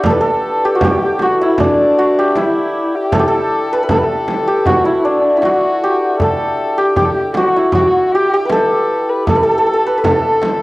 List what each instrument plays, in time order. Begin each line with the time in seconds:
Already playing: santur D4 E4 G4
0.04 santur A4, kamancheh A4, frame drum, tombak dum
0.10 santur B4
0.21 santur A4, kamancheh A4
0.44 tombak ka
0.65 santur G4
0.75 santur F#4, kamancheh A4
0.81 kamancheh G4, santur G4, frame drum, tombak dum
1.02 tombak ka
1.19 kamancheh F#4, santur F#4, frame drum
1.41 santur E4, kamancheh E4, tombak ka
1.54 kamancheh E4, frame drum
1.60 santur D4, kamancheh D4, tombak dum
1.98 santur F#4
2.19 santur G4
2.36 santur E4, kamancheh E4, tombak tek, frame drum
2.95 kamancheh G4
3.12 santur A4, kamancheh A4, tombak dum, frame drum
3.19 santur G4
3.28 santur A4, kamancheh A4
3.51 tombak ka
3.73 santur B4
3.83 santur B4
3.89 santur A4, kamancheh A4, tombak dum, frame drum
3.97 kamancheh B4
4.04 kamancheh A4
4.28 frame drum
4.48 santur G4
4.66 santur F#4, kamancheh F#4, tombak dum, frame drum
4.84 kamancheh E4, santur E4
5.05 kamancheh D4, santur D4
5.37 santur E4
5.42 kamancheh F#4, santur F#4, tombak tek, frame drum
5.84 santur G4
6.20 kamancheh A4, santur A4, frame drum, tombak dum
6.39 tombak ka
6.60 tombak ka
6.78 santur G4, kamancheh G4
6.96 santur G4, kamancheh G4, tombak dum, frame drum
7.05 kamancheh A4
7.11 kamancheh G4
7.15 tombak ka
7.34 kamancheh F#4, santur F#4, tombak tek, frame drum
7.56 santur E4
7.72 kamancheh F#4, santur F#4, frame drum, tombak dum
7.81 kamancheh G4
7.87 kamancheh F#4
8.11 kamancheh G4, santur G4, tombak ka
8.34 santur G4
8.45 santur B4
8.49 kamancheh A4, santur A4, tombak tek, frame drum
8.89 tombak ka
9.09 kamancheh B4
9.27 kamancheh A4, santur A4, frame drum, tombak dum
9.35 santur A4, kamancheh B4
9.43 kamancheh A4, santur A4
9.51 santur A4
9.58 santur A4
9.66 santur A4, tombak ka
9.73 santur A4
9.86 santur B4
9.98 santur B4
10.04 kamancheh A4, santur A4, tombak dum, frame drum
10.24 tombak ka
10.42 tombak tek, frame drum